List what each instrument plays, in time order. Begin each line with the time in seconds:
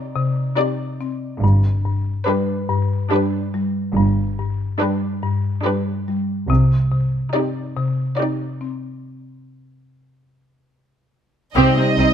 Already playing: viola section D#4 G4, grand piano D#4 D5, violin section D5
0.15 marimba C3
0.57 marimba C4, viola section D#4 G4, violin section D5
1.01 marimba C4
1.41 double bass section G1, cello section G2, marimba G2
1.85 marimba G2
2.26 marimba G3, viola section D4 G4, violin section B4, grand piano B4
2.70 marimba G2
3.11 marimba G3, viola section D4 G4, violin section B4
3.54 marimba G3
3.95 double bass section G1, cello section G2, marimba G2
4.39 marimba G2
4.80 marimba G3, viola section D4 G4, violin section B4
5.23 marimba G2
5.64 marimba G3, viola section D4 G4, violin section B4
6.08 marimba G3
6.49 double bass section C2, cello section C3, marimba C3
6.92 marimba C3
7.34 marimba C4, viola section D#4 G4, violin section D5
7.77 marimba C3
8.18 marimba C4, viola section D#4 G4, violin section D5
8.61 marimba C4
11.55 double bass section C2, marimba C3, trombone section C3 G3, cello section C3, viola section C4, french horn section C4 D#4, violin section G4 D#5
11.77 cello section C3, violin section C4, viola section C4
11.97 double bass section C2, cello section C3, viola section C4, marimba C4, violin section D#4